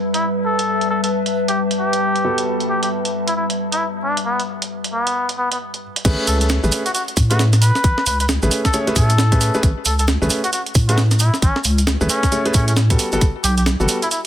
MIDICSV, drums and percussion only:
0, 0, Header, 1, 2, 480
1, 0, Start_track
1, 0, Key_signature, 3, "major"
1, 0, Tempo, 447761
1, 727, Time_signature, 4, 2, 24, 8
1, 15296, End_track
2, 0, Start_track
2, 0, Title_t, "Drums"
2, 152, Note_on_c, 9, 42, 60
2, 259, Note_off_c, 9, 42, 0
2, 632, Note_on_c, 9, 42, 65
2, 739, Note_off_c, 9, 42, 0
2, 872, Note_on_c, 9, 42, 34
2, 979, Note_off_c, 9, 42, 0
2, 1112, Note_on_c, 9, 42, 65
2, 1219, Note_off_c, 9, 42, 0
2, 1352, Note_on_c, 9, 42, 50
2, 1459, Note_off_c, 9, 42, 0
2, 1591, Note_on_c, 9, 42, 64
2, 1698, Note_off_c, 9, 42, 0
2, 1832, Note_on_c, 9, 42, 51
2, 1939, Note_off_c, 9, 42, 0
2, 2071, Note_on_c, 9, 42, 63
2, 2178, Note_off_c, 9, 42, 0
2, 2311, Note_on_c, 9, 42, 35
2, 2418, Note_off_c, 9, 42, 0
2, 2551, Note_on_c, 9, 42, 66
2, 2658, Note_off_c, 9, 42, 0
2, 2792, Note_on_c, 9, 42, 34
2, 2899, Note_off_c, 9, 42, 0
2, 3031, Note_on_c, 9, 42, 64
2, 3138, Note_off_c, 9, 42, 0
2, 3271, Note_on_c, 9, 42, 51
2, 3378, Note_off_c, 9, 42, 0
2, 3511, Note_on_c, 9, 42, 60
2, 3618, Note_off_c, 9, 42, 0
2, 3751, Note_on_c, 9, 42, 52
2, 3858, Note_off_c, 9, 42, 0
2, 3992, Note_on_c, 9, 42, 66
2, 4099, Note_off_c, 9, 42, 0
2, 4472, Note_on_c, 9, 42, 66
2, 4579, Note_off_c, 9, 42, 0
2, 4712, Note_on_c, 9, 42, 36
2, 4819, Note_off_c, 9, 42, 0
2, 4953, Note_on_c, 9, 42, 62
2, 5060, Note_off_c, 9, 42, 0
2, 5193, Note_on_c, 9, 42, 51
2, 5300, Note_off_c, 9, 42, 0
2, 5433, Note_on_c, 9, 42, 61
2, 5540, Note_off_c, 9, 42, 0
2, 5672, Note_on_c, 9, 42, 52
2, 5779, Note_off_c, 9, 42, 0
2, 5913, Note_on_c, 9, 42, 63
2, 6020, Note_off_c, 9, 42, 0
2, 6153, Note_on_c, 9, 42, 35
2, 6260, Note_off_c, 9, 42, 0
2, 6392, Note_on_c, 9, 42, 66
2, 6485, Note_on_c, 9, 36, 119
2, 6486, Note_off_c, 9, 42, 0
2, 6486, Note_on_c, 9, 42, 65
2, 6486, Note_on_c, 9, 49, 105
2, 6488, Note_on_c, 9, 69, 49
2, 6592, Note_off_c, 9, 36, 0
2, 6593, Note_off_c, 9, 42, 0
2, 6593, Note_off_c, 9, 49, 0
2, 6595, Note_off_c, 9, 69, 0
2, 6726, Note_on_c, 9, 46, 107
2, 6726, Note_on_c, 9, 69, 100
2, 6833, Note_off_c, 9, 46, 0
2, 6833, Note_off_c, 9, 69, 0
2, 6870, Note_on_c, 9, 69, 36
2, 6872, Note_on_c, 9, 42, 66
2, 6960, Note_off_c, 9, 69, 0
2, 6960, Note_on_c, 9, 69, 49
2, 6965, Note_on_c, 9, 38, 115
2, 6979, Note_off_c, 9, 42, 0
2, 7068, Note_off_c, 9, 69, 0
2, 7073, Note_off_c, 9, 38, 0
2, 7114, Note_on_c, 9, 69, 40
2, 7203, Note_off_c, 9, 69, 0
2, 7203, Note_on_c, 9, 69, 97
2, 7205, Note_on_c, 9, 46, 93
2, 7310, Note_off_c, 9, 69, 0
2, 7313, Note_off_c, 9, 46, 0
2, 7352, Note_on_c, 9, 42, 52
2, 7354, Note_on_c, 9, 69, 41
2, 7446, Note_off_c, 9, 42, 0
2, 7446, Note_on_c, 9, 42, 66
2, 7450, Note_off_c, 9, 69, 0
2, 7450, Note_on_c, 9, 69, 54
2, 7553, Note_off_c, 9, 42, 0
2, 7557, Note_off_c, 9, 69, 0
2, 7592, Note_on_c, 9, 42, 38
2, 7685, Note_on_c, 9, 36, 105
2, 7685, Note_on_c, 9, 69, 97
2, 7686, Note_on_c, 9, 46, 108
2, 7699, Note_off_c, 9, 42, 0
2, 7792, Note_off_c, 9, 36, 0
2, 7792, Note_off_c, 9, 69, 0
2, 7793, Note_off_c, 9, 46, 0
2, 7831, Note_on_c, 9, 69, 40
2, 7832, Note_on_c, 9, 42, 65
2, 7926, Note_on_c, 9, 38, 118
2, 7927, Note_off_c, 9, 69, 0
2, 7927, Note_on_c, 9, 69, 51
2, 7939, Note_off_c, 9, 42, 0
2, 8033, Note_off_c, 9, 38, 0
2, 8035, Note_off_c, 9, 69, 0
2, 8069, Note_on_c, 9, 69, 33
2, 8072, Note_on_c, 9, 40, 57
2, 8072, Note_on_c, 9, 42, 65
2, 8165, Note_on_c, 9, 46, 97
2, 8172, Note_off_c, 9, 69, 0
2, 8172, Note_on_c, 9, 69, 92
2, 8179, Note_off_c, 9, 40, 0
2, 8179, Note_off_c, 9, 42, 0
2, 8272, Note_off_c, 9, 46, 0
2, 8279, Note_off_c, 9, 69, 0
2, 8312, Note_on_c, 9, 40, 60
2, 8315, Note_on_c, 9, 69, 37
2, 8405, Note_off_c, 9, 69, 0
2, 8405, Note_on_c, 9, 36, 125
2, 8405, Note_on_c, 9, 69, 51
2, 8406, Note_on_c, 9, 42, 62
2, 8419, Note_off_c, 9, 40, 0
2, 8512, Note_off_c, 9, 36, 0
2, 8513, Note_off_c, 9, 42, 0
2, 8513, Note_off_c, 9, 69, 0
2, 8552, Note_on_c, 9, 40, 58
2, 8644, Note_on_c, 9, 69, 100
2, 8645, Note_on_c, 9, 46, 101
2, 8659, Note_off_c, 9, 40, 0
2, 8751, Note_off_c, 9, 69, 0
2, 8752, Note_off_c, 9, 46, 0
2, 8789, Note_on_c, 9, 69, 36
2, 8792, Note_on_c, 9, 42, 64
2, 8885, Note_off_c, 9, 69, 0
2, 8885, Note_on_c, 9, 38, 124
2, 8885, Note_on_c, 9, 69, 56
2, 8899, Note_off_c, 9, 42, 0
2, 8993, Note_off_c, 9, 38, 0
2, 8993, Note_off_c, 9, 69, 0
2, 9031, Note_on_c, 9, 69, 35
2, 9126, Note_on_c, 9, 46, 90
2, 9128, Note_off_c, 9, 69, 0
2, 9128, Note_on_c, 9, 69, 90
2, 9233, Note_off_c, 9, 46, 0
2, 9235, Note_off_c, 9, 69, 0
2, 9271, Note_on_c, 9, 36, 64
2, 9272, Note_on_c, 9, 40, 69
2, 9272, Note_on_c, 9, 42, 50
2, 9274, Note_on_c, 9, 69, 45
2, 9361, Note_off_c, 9, 69, 0
2, 9361, Note_on_c, 9, 69, 56
2, 9366, Note_off_c, 9, 42, 0
2, 9366, Note_on_c, 9, 42, 64
2, 9378, Note_off_c, 9, 36, 0
2, 9379, Note_off_c, 9, 40, 0
2, 9468, Note_off_c, 9, 69, 0
2, 9473, Note_off_c, 9, 42, 0
2, 9512, Note_on_c, 9, 42, 36
2, 9604, Note_on_c, 9, 69, 89
2, 9605, Note_on_c, 9, 36, 113
2, 9606, Note_on_c, 9, 46, 108
2, 9620, Note_off_c, 9, 42, 0
2, 9711, Note_off_c, 9, 69, 0
2, 9712, Note_off_c, 9, 36, 0
2, 9713, Note_off_c, 9, 46, 0
2, 9752, Note_on_c, 9, 69, 41
2, 9753, Note_on_c, 9, 42, 61
2, 9846, Note_on_c, 9, 38, 127
2, 9849, Note_off_c, 9, 69, 0
2, 9849, Note_on_c, 9, 69, 57
2, 9860, Note_off_c, 9, 42, 0
2, 9953, Note_off_c, 9, 38, 0
2, 9956, Note_off_c, 9, 69, 0
2, 9991, Note_on_c, 9, 36, 108
2, 9991, Note_on_c, 9, 42, 63
2, 9996, Note_on_c, 9, 69, 35
2, 10086, Note_off_c, 9, 69, 0
2, 10086, Note_on_c, 9, 46, 96
2, 10086, Note_on_c, 9, 69, 101
2, 10098, Note_off_c, 9, 36, 0
2, 10099, Note_off_c, 9, 42, 0
2, 10193, Note_off_c, 9, 46, 0
2, 10194, Note_off_c, 9, 69, 0
2, 10228, Note_on_c, 9, 69, 38
2, 10325, Note_on_c, 9, 36, 123
2, 10325, Note_on_c, 9, 42, 61
2, 10329, Note_off_c, 9, 69, 0
2, 10329, Note_on_c, 9, 69, 54
2, 10432, Note_off_c, 9, 36, 0
2, 10432, Note_off_c, 9, 42, 0
2, 10436, Note_off_c, 9, 69, 0
2, 10561, Note_on_c, 9, 69, 104
2, 10565, Note_on_c, 9, 46, 103
2, 10668, Note_off_c, 9, 69, 0
2, 10673, Note_off_c, 9, 46, 0
2, 10706, Note_on_c, 9, 69, 42
2, 10712, Note_on_c, 9, 42, 63
2, 10803, Note_off_c, 9, 69, 0
2, 10803, Note_on_c, 9, 69, 51
2, 10806, Note_on_c, 9, 38, 123
2, 10819, Note_off_c, 9, 42, 0
2, 10910, Note_off_c, 9, 69, 0
2, 10913, Note_off_c, 9, 38, 0
2, 10959, Note_on_c, 9, 69, 36
2, 11040, Note_off_c, 9, 69, 0
2, 11040, Note_on_c, 9, 69, 98
2, 11046, Note_on_c, 9, 46, 89
2, 11147, Note_off_c, 9, 69, 0
2, 11153, Note_off_c, 9, 46, 0
2, 11192, Note_on_c, 9, 42, 49
2, 11193, Note_on_c, 9, 69, 37
2, 11286, Note_off_c, 9, 42, 0
2, 11286, Note_on_c, 9, 42, 65
2, 11288, Note_off_c, 9, 69, 0
2, 11288, Note_on_c, 9, 69, 53
2, 11393, Note_off_c, 9, 42, 0
2, 11395, Note_off_c, 9, 69, 0
2, 11432, Note_on_c, 9, 42, 36
2, 11522, Note_on_c, 9, 69, 91
2, 11526, Note_on_c, 9, 36, 112
2, 11526, Note_on_c, 9, 46, 102
2, 11539, Note_off_c, 9, 42, 0
2, 11629, Note_off_c, 9, 69, 0
2, 11633, Note_off_c, 9, 36, 0
2, 11633, Note_off_c, 9, 46, 0
2, 11673, Note_on_c, 9, 42, 62
2, 11679, Note_on_c, 9, 69, 39
2, 11767, Note_off_c, 9, 69, 0
2, 11767, Note_on_c, 9, 38, 127
2, 11767, Note_on_c, 9, 69, 50
2, 11780, Note_off_c, 9, 42, 0
2, 11874, Note_off_c, 9, 38, 0
2, 11874, Note_off_c, 9, 69, 0
2, 11911, Note_on_c, 9, 69, 43
2, 11913, Note_on_c, 9, 40, 57
2, 11913, Note_on_c, 9, 42, 64
2, 12000, Note_off_c, 9, 69, 0
2, 12000, Note_on_c, 9, 69, 92
2, 12007, Note_on_c, 9, 46, 91
2, 12020, Note_off_c, 9, 40, 0
2, 12020, Note_off_c, 9, 42, 0
2, 12107, Note_off_c, 9, 69, 0
2, 12114, Note_off_c, 9, 46, 0
2, 12153, Note_on_c, 9, 40, 60
2, 12159, Note_on_c, 9, 69, 46
2, 12246, Note_on_c, 9, 36, 125
2, 12247, Note_on_c, 9, 42, 65
2, 12250, Note_off_c, 9, 69, 0
2, 12250, Note_on_c, 9, 69, 57
2, 12260, Note_off_c, 9, 40, 0
2, 12353, Note_off_c, 9, 36, 0
2, 12354, Note_off_c, 9, 42, 0
2, 12357, Note_off_c, 9, 69, 0
2, 12392, Note_on_c, 9, 40, 53
2, 12479, Note_on_c, 9, 69, 94
2, 12486, Note_on_c, 9, 46, 100
2, 12500, Note_off_c, 9, 40, 0
2, 12586, Note_off_c, 9, 69, 0
2, 12593, Note_off_c, 9, 46, 0
2, 12631, Note_on_c, 9, 69, 44
2, 12633, Note_on_c, 9, 42, 62
2, 12726, Note_on_c, 9, 38, 124
2, 12730, Note_off_c, 9, 69, 0
2, 12730, Note_on_c, 9, 69, 54
2, 12740, Note_off_c, 9, 42, 0
2, 12833, Note_off_c, 9, 38, 0
2, 12837, Note_off_c, 9, 69, 0
2, 12875, Note_on_c, 9, 69, 38
2, 12966, Note_off_c, 9, 69, 0
2, 12966, Note_on_c, 9, 46, 90
2, 12966, Note_on_c, 9, 69, 96
2, 13073, Note_off_c, 9, 46, 0
2, 13073, Note_off_c, 9, 69, 0
2, 13112, Note_on_c, 9, 36, 65
2, 13113, Note_on_c, 9, 40, 65
2, 13113, Note_on_c, 9, 42, 49
2, 13114, Note_on_c, 9, 69, 44
2, 13206, Note_off_c, 9, 42, 0
2, 13206, Note_on_c, 9, 42, 62
2, 13208, Note_off_c, 9, 69, 0
2, 13208, Note_on_c, 9, 69, 56
2, 13219, Note_off_c, 9, 36, 0
2, 13220, Note_off_c, 9, 40, 0
2, 13313, Note_off_c, 9, 42, 0
2, 13316, Note_off_c, 9, 69, 0
2, 13352, Note_on_c, 9, 42, 35
2, 13442, Note_on_c, 9, 69, 104
2, 13446, Note_on_c, 9, 36, 109
2, 13446, Note_on_c, 9, 46, 101
2, 13459, Note_off_c, 9, 42, 0
2, 13550, Note_off_c, 9, 69, 0
2, 13553, Note_off_c, 9, 36, 0
2, 13553, Note_off_c, 9, 46, 0
2, 13592, Note_on_c, 9, 42, 63
2, 13592, Note_on_c, 9, 69, 43
2, 13685, Note_off_c, 9, 69, 0
2, 13685, Note_on_c, 9, 38, 125
2, 13685, Note_on_c, 9, 69, 59
2, 13699, Note_off_c, 9, 42, 0
2, 13792, Note_off_c, 9, 38, 0
2, 13793, Note_off_c, 9, 69, 0
2, 13831, Note_on_c, 9, 42, 64
2, 13832, Note_on_c, 9, 36, 111
2, 13835, Note_on_c, 9, 69, 41
2, 13925, Note_on_c, 9, 46, 88
2, 13926, Note_off_c, 9, 69, 0
2, 13926, Note_on_c, 9, 69, 98
2, 13938, Note_off_c, 9, 42, 0
2, 13939, Note_off_c, 9, 36, 0
2, 14033, Note_off_c, 9, 46, 0
2, 14033, Note_off_c, 9, 69, 0
2, 14066, Note_on_c, 9, 69, 44
2, 14166, Note_off_c, 9, 69, 0
2, 14166, Note_on_c, 9, 36, 120
2, 14166, Note_on_c, 9, 42, 67
2, 14166, Note_on_c, 9, 69, 52
2, 14273, Note_off_c, 9, 36, 0
2, 14273, Note_off_c, 9, 42, 0
2, 14273, Note_off_c, 9, 69, 0
2, 14406, Note_on_c, 9, 46, 99
2, 14411, Note_on_c, 9, 69, 92
2, 14513, Note_off_c, 9, 46, 0
2, 14518, Note_off_c, 9, 69, 0
2, 14550, Note_on_c, 9, 69, 34
2, 14553, Note_on_c, 9, 42, 64
2, 14646, Note_on_c, 9, 38, 119
2, 14652, Note_off_c, 9, 69, 0
2, 14652, Note_on_c, 9, 69, 54
2, 14660, Note_off_c, 9, 42, 0
2, 14753, Note_off_c, 9, 38, 0
2, 14759, Note_off_c, 9, 69, 0
2, 14798, Note_on_c, 9, 69, 35
2, 14884, Note_off_c, 9, 69, 0
2, 14884, Note_on_c, 9, 69, 97
2, 14887, Note_on_c, 9, 46, 87
2, 14991, Note_off_c, 9, 69, 0
2, 14994, Note_off_c, 9, 46, 0
2, 15034, Note_on_c, 9, 42, 53
2, 15036, Note_on_c, 9, 69, 41
2, 15128, Note_off_c, 9, 42, 0
2, 15128, Note_on_c, 9, 42, 66
2, 15129, Note_off_c, 9, 69, 0
2, 15129, Note_on_c, 9, 69, 53
2, 15236, Note_off_c, 9, 42, 0
2, 15236, Note_off_c, 9, 69, 0
2, 15296, End_track
0, 0, End_of_file